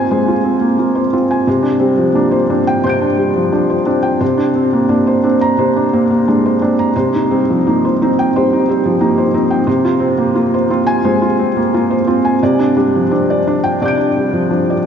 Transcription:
0.00 1.47 C3 medium
0.00 0.61 A#3 soft
0.00 0.44 C4 soft
0.00 0.28 F4 soft
0.00 0.11 C5 medium
0.00 0.20 G#5 medium
0.11 0.66 G#3 soft
0.11 0.38 C5 medium
0.28 0.55 F4 soft
0.44 0.99 C4 soft
0.61 0.76 A#3 soft
0.78 1.12 A#3 soft
0.78 1.06 F4 soft
0.95 1.23 C5 soft
1.13 1.47 C4 soft
1.13 1.40 F4 soft
1.31 1.47 G#5 soft
1.47 2.81 C3 medium
1.47 1.75 C5 medium
1.63 1.90 D4 soft
1.80 2.08 G3 soft
1.80 2.35 C4 soft
1.98 2.15 F3 soft
2.15 2.49 A#3 soft
2.15 2.43 D4 soft
2.32 2.60 C5 soft
2.50 3.05 C4 soft
2.50 2.77 D4 soft
2.67 2.95 G5 medium
2.84 4.17 C3 medium
2.84 3.12 C5 medium
2.84 4.17 C6 soft
2.84 4.18 G6 soft
2.89 4.20 D7 soft
3.02 3.29 D4 soft
3.17 3.73 G3 soft
3.36 3.51 F3 soft
3.52 3.87 F3 soft
3.52 3.80 D4 soft
3.70 3.97 C5 soft
3.86 4.20 C4 soft
3.86 4.14 D4 soft
4.03 4.20 G5 medium
4.21 5.54 C3 medium
4.21 4.48 C5 medium
4.38 4.66 D4 soft
4.56 4.83 C4 soft
4.73 4.88 A#3 soft
4.89 5.24 A#3 soft
4.89 5.17 D4 soft
5.07 5.34 C5 soft
5.24 5.79 C4 soft
5.24 5.51 D4 medium
5.41 5.68 A#5 medium
5.58 6.90 C3 medium
5.58 5.86 C5 medium
5.76 6.03 D4 soft
5.93 6.09 A#3 soft
5.93 6.20 C4 soft
6.11 6.27 A#3 soft
6.28 6.61 G#3 soft
6.28 6.54 D4 soft
6.46 6.72 C5 soft
6.61 6.95 C4 soft
6.61 6.88 D4 soft
6.79 6.95 A#5 medium
6.96 8.29 C3 medium
6.96 7.23 C5 medium
7.15 7.41 D#4 soft
7.31 7.57 G3 medium
7.31 7.85 C4 medium
7.50 7.65 F3 soft
7.67 7.99 A#3 soft
7.67 7.92 D#4 medium
7.85 8.10 C5 medium
8.02 8.54 C4 soft
8.02 8.27 D#4 medium
8.19 8.44 G5 medium
8.36 8.67 G3 medium
8.36 8.61 C5 medium
8.53 8.78 D#4 soft
8.69 8.94 G3 medium
8.69 9.21 C4 soft
8.86 9.01 F3 soft
9.01 9.34 A#3 soft
9.01 9.27 D#4 medium
9.18 9.44 C5 soft
9.34 9.67 C4 medium
9.34 9.60 D#4 medium
9.50 9.67 G5 medium
9.67 11.00 C3 medium
9.67 9.94 C5 medium
9.85 10.11 F4 medium
10.00 10.55 C4 medium
10.18 10.34 A#3 soft
10.35 10.70 A#3 soft
10.35 10.62 F4 medium
10.54 10.80 C5 medium
10.70 11.25 C4 medium
10.70 10.97 F4 medium
10.87 11.14 G#5 medium
11.05 11.59 G#3 medium
11.05 11.31 C5 medium
11.22 11.49 F4 medium
11.39 11.93 C4 medium
11.56 11.73 A#3 soft
11.74 12.07 A#3 soft
11.74 12.00 F4 medium
11.91 12.17 C5 medium
12.07 12.41 C4 medium
12.07 12.34 F4 medium
12.25 12.41 G#5 medium
12.43 13.76 C3 medium
12.43 12.69 D5 medium
12.59 12.75 D4 medium
12.77 13.03 G3 soft
12.77 13.10 D4 soft
12.96 13.11 F3 soft
13.11 13.45 C4 soft
13.11 13.38 D4 medium
13.30 13.56 D5 soft
13.47 13.96 D4 soft
13.64 13.90 G5 medium
13.82 14.86 C3 medium
13.82 14.08 D5 medium
13.82 14.86 D6 soft
13.82 14.86 G6 soft
13.88 14.86 D7 soft
13.98 14.25 D4 soft
14.16 14.72 G3 soft
14.33 14.49 F3 soft
14.51 14.85 F3 soft
14.51 14.78 D4 soft
14.70 14.86 D5 soft

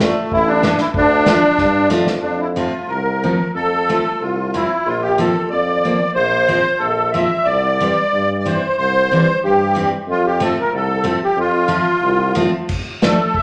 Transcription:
0.00 0.10 A1 medium
0.00 0.15 F3 medium
0.00 0.32 A3 medium
0.00 0.15 A3 medium
0.00 0.15 D4 medium
0.00 snare medium
0.32 0.73 A1 medium
0.32 0.49 E4 loud
0.32 kick medium
0.47 0.80 D4 medium
0.63 0.78 E3 medium
0.63 0.78 A3 soft
0.63 0.78 C#4 medium
0.63 snare medium
0.78 0.87 E4 medium
0.78 snare medium
0.94 1.36 D2 medium
0.94 1.89 D4 loud
0.94 kick medium
1.26 1.41 F3 medium
1.26 1.41 A3 medium
1.26 1.41 D4 medium
1.26 snare medium
1.58 1.88 G2 medium
1.58 kick medium
1.58 snare soft
1.90 2.20 F2 medium
1.90 2.06 F3 medium
1.90 2.06 A3 medium
1.90 2.06 D4 medium
1.90 snare medium
2.07 snare medium
2.22 2.66 F2 medium
2.22 2.41 D4 medium
2.40 2.48 E4 medium
2.56 2.72 F3 soft
2.56 2.72 A3 soft
2.56 2.72 C4 soft
2.56 2.91 F4 medium
2.88 3.32 C2 medium
2.88 3.51 A#4 medium
3.23 3.39 F3 soft
3.23 3.38 A3 soft
3.23 3.39 C4 soft
3.54 3.98 F2 medium
3.54 4.23 A4 medium
3.89 4.04 F3 soft
3.89 4.04 A3 soft
3.89 4.04 C4 soft
4.21 4.63 C2 medium
4.21 4.56 F4 medium
4.54 4.69 F3 soft
4.54 4.69 A3 soft
4.54 4.69 C4 medium
4.54 4.88 E4 medium
4.86 5.28 A#1 medium
4.86 5.03 F4 medium
5.02 5.19 G4 medium
5.18 5.33 F3 medium
5.18 5.34 A#3 medium
5.18 5.34 C4 medium
5.18 5.49 A4 medium
5.50 5.93 F2 medium
5.50 6.11 D5 medium
5.85 5.99 F3 soft
5.85 5.99 A#3 soft
5.85 5.99 C4 medium
6.15 6.58 A#1 medium
6.15 6.82 C5 loud
6.48 6.63 F3 soft
6.48 6.63 A#3 soft
6.48 6.63 C4 medium
6.79 7.23 A#1 medium
6.79 7.11 A4 medium
7.12 7.29 F3 soft
7.12 7.29 A#3 soft
7.12 7.29 C4 soft
7.12 7.47 E5 medium
7.45 7.90 C2 medium
7.45 8.37 D5 medium
7.80 7.95 E3 soft
7.80 7.96 G3 soft
7.80 7.96 C4 soft
8.13 8.56 G2 medium
8.39 8.46 D5 medium
8.46 8.61 E3 soft
8.46 8.61 G3 soft
8.46 8.61 C4 medium
8.46 8.76 C5 medium
8.78 9.21 C2 medium
8.78 9.39 C5 loud
9.11 9.26 E3 soft
9.11 9.26 G3 soft
9.11 9.26 C4 medium
9.44 9.86 G2 medium
9.44 9.89 G4 medium
9.75 9.90 E3 soft
9.75 9.90 G3 soft
9.75 9.91 C4 medium
10.08 10.50 F2 medium
10.08 10.26 F4 medium
10.26 10.42 G4 medium
10.40 10.55 F3 medium
10.40 10.55 A3 medium
10.40 10.56 C4 medium
10.40 10.58 A4 medium
10.59 10.73 A#4 medium
10.72 11.14 C2 medium
10.72 11.19 A4 medium
11.04 11.19 F3 medium
11.04 11.19 A3 soft
11.04 11.19 C4 medium
11.24 11.39 G4 medium
11.37 11.80 F2 medium
11.37 12.34 F4 medium
11.68 11.84 F3 medium
11.68 11.84 A3 soft
11.68 11.84 C4 medium
12.02 12.45 C2 medium
12.35 12.50 F3 medium
12.35 12.51 A3 medium
12.35 12.51 C4 medium
12.69 kick medium
12.69 crash medium
13.02 13.16 F3 soft
13.02 13.17 A3 medium
13.02 13.17 D4 medium
13.02 13.37 A4 medium
13.02 snare medium
13.34 13.42 E5 medium
13.34 kick medium

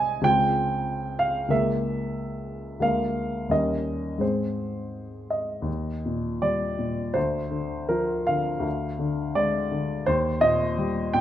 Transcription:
0.00 0.20 C2 soft
0.00 0.20 G#3 soft
0.00 0.21 C4 soft
0.00 0.21 D#4 soft
0.00 0.28 D#5 medium
0.00 0.24 G#5 medium
0.21 1.45 C#2 soft
0.21 1.45 G#3 soft
0.21 1.46 C4 soft
0.21 1.46 F4 soft
0.21 1.19 G5 medium
1.19 1.51 F5 medium
1.48 2.76 C#2 soft
1.48 2.77 G#3 soft
1.48 2.77 A#3 soft
1.48 2.77 A#4 soft
1.48 1.82 E5 medium
2.80 3.47 D2 soft
2.80 3.48 G#3 soft
2.80 3.48 A#3 soft
2.80 3.48 A#4 soft
2.80 3.50 F5 medium
3.49 4.19 D#2 soft
3.49 4.19 G3 soft
3.49 4.19 C#4 soft
3.49 4.20 A#4 soft
3.49 4.22 D#5 medium
4.18 5.61 G#2 soft
4.18 5.62 G#3 soft
4.18 5.62 C4 soft
4.18 5.62 G#4 soft
4.18 5.29 C5 soft
5.30 6.42 D#5 medium
5.62 7.09 D#2 soft
6.06 6.65 A#2 soft
6.42 7.01 G3 soft
6.42 7.15 D5 medium
6.79 7.15 A#2 soft
7.14 8.58 D2 soft
7.14 7.89 C5 medium
7.51 8.13 D3 soft
7.89 8.50 F3 soft
7.89 8.28 A#4 medium
8.27 8.65 D3 soft
8.27 9.34 F5 medium
8.60 10.00 D2 soft
8.99 9.56 D3 soft
9.35 9.93 G#3 soft
9.35 10.07 D5 medium
9.72 10.07 D3 soft
10.06 11.21 D#2 medium
10.06 10.42 C5 medium
10.41 10.99 A#2 soft
10.41 11.13 D#5 medium
10.78 11.21 G3 soft
11.13 11.21 A#2 soft
11.13 11.21 G5 medium

